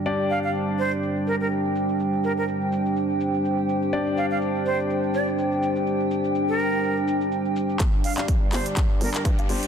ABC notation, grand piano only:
X:1
M:4/4
L:1/16
Q:"Swing 16ths" 1/4=124
K:Cdor
V:1 name="Grand piano"
[DGd]16- | [DGd]16 | [DGd]16- | [DGd]16 |
z3 [DGd] z2 [DGd]6- [DGd] [DGf] [DGc] z |]